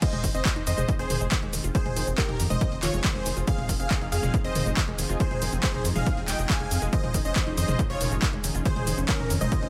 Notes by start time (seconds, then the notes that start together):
0.02 D#3 F3 C4 D#4 G#4 C5 D#5, kick, closed hi-hat, crash, shaker
0.13 F1 G#3, closed hi-hat, mid tom
0.24 F1 D#3, kick, open hi-hat, shaker
0.34 F1 C4 C5 D#5, shaker
0.45 D#3, kick, clap, closed hi-hat, shaker
0.56 F1 D#4, closed hi-hat
0.67 F2 D#3 C5 D#5, open hi-hat, shaker
0.78 F1 G#3, closed hi-hat, mid tom, shaker
0.88 D#3, kick, closed hi-hat, shaker
0.99 F1 C4 G#4 C5, closed hi-hat
1.10 F1 D#3, open hi-hat, mid tom, shaker
1.21 F1 G#3, closed hi-hat, shaker
1.32 D#3, kick, clap, closed hi-hat, shaker
1.42 F1 G#3, closed hi-hat
1.53 F1 D#3, open hi-hat, shaker
1.64 F1 F4, closed hi-hat, shaker
1.75 D#3 G#4 C5, kick, closed hi-hat, shaker
1.86 F1 G#3, closed hi-hat, mid tom
1.96 F1 D#3, open hi-hat, shaker
2.07 F1 C4, closed hi-hat, shaker
2.18 D#3 G4 A#4, kick, clap, closed hi-hat, shaker
2.29 F1 D#4, closed hi-hat, mid tom
2.40 F2 D#3, open hi-hat, shaker
2.50 F1 G#3 C5 D#5, closed hi-hat, mid tom, shaker
2.61 D#3, kick, closed hi-hat, shaker
2.72 F1 C4, closed hi-hat
2.83 F1 D#3 F4 C#5, clap, open hi-hat, shaker
2.93 F1 G#3, closed hi-hat, shaker
3.04 D#3 G#4 C5, kick, clap, closed hi-hat, shaker
3.15 F1 G#3, closed hi-hat
3.26 F1 D#3, open hi-hat, shaker
3.37 F1 F4, closed hi-hat, shaker
3.47 D#3 G#4 F5, kick, closed hi-hat, shaker
3.58 F1 G#3, closed hi-hat, mid tom
3.69 F1 D#3, kick, open hi-hat, shaker
3.80 F1 C4 G#4 F5, closed hi-hat, shaker
3.91 D#3, kick, clap, closed hi-hat, shaker
4.01 F1 D#4, closed hi-hat
4.12 F2 D#3 G#4 F5, open hi-hat, shaker
4.23 F1 G#3, closed hi-hat, mid tom, shaker
4.34 D#3, kick, closed hi-hat, shaker
4.44 F1 C4 C5 D#5, closed hi-hat
4.55 F1 D#3, open hi-hat, mid tom, shaker
4.66 F1 G#3, closed hi-hat, shaker
4.77 D#3, kick, clap, closed hi-hat, shaker
4.88 F1 G#3, closed hi-hat
4.99 F1 D#3, open hi-hat, shaker
5.09 F1 F4, closed hi-hat, shaker
5.20 D#3 G#4 C5, kick, closed hi-hat, shaker
5.31 F1 G#3, closed hi-hat, mid tom
5.42 F1 D#3, open hi-hat, shaker
5.52 F1 C4, closed hi-hat, shaker
5.63 D#3 G#4 C5, kick, clap, closed hi-hat, shaker
5.74 F1 D#4, closed hi-hat, mid tom
5.85 F2 D#3, open hi-hat, shaker
5.96 F1 G#3 G#4 F5, closed hi-hat, mid tom, shaker
6.06 D#3, kick, closed hi-hat, shaker
6.17 F1 C4, closed hi-hat
6.28 F1 G#3 D#5 G5, clap, open hi-hat, shaker
6.39 F1 G#3, closed hi-hat, shaker
6.50 F3 F5 G#5, kick, clap, closed hi-hat, shaker
6.60 F1 G#3, closed hi-hat
6.71 F2 C4, open hi-hat, shaker
6.82 F1 G#3, closed hi-hat, shaker
6.93 D#3 C#4 C5 D#5, kick, closed hi-hat, shaker
7.04 F1 G#3, closed hi-hat, mid tom
7.14 F1 D#3, kick, open hi-hat, shaker
7.25 F1 C#4 C5 D#5, closed hi-hat, shaker
7.36 D#3, kick, clap, closed hi-hat, shaker
7.47 F1 D#4, closed hi-hat
7.57 F2 D#3 C5 D#5, open hi-hat, shaker
7.68 F1 G#3, mid tom, shaker
7.79 D#3, kick, closed hi-hat, shaker
7.90 F1 C#4 F4 C#5, closed hi-hat
8.01 F1 D#3, open hi-hat, mid tom, shaker
8.11 F1 G#3, closed hi-hat, shaker
8.22 D#3, kick, clap, closed hi-hat, shaker
8.33 F1 G#3, closed hi-hat
8.44 F1 D#3, open hi-hat, shaker
8.55 F1 F4, closed hi-hat, shaker
8.65 D#3 G#4 C5, kick, closed hi-hat, shaker
8.76 F1 G#3, closed hi-hat, mid tom
8.87 F1 D#3, open hi-hat, shaker
8.98 F1 C#4, closed hi-hat, shaker
9.09 D#3 C#4 A#4, kick, clap, closed hi-hat, shaker
9.19 F1 D#4, closed hi-hat, mid tom
9.30 F2 D#3, open hi-hat, shaker
9.41 F1 G#3 C5 D#5, closed hi-hat, mid tom, shaker
9.52 D#3, kick, closed hi-hat, shaker
9.62 F1 C#4, closed hi-hat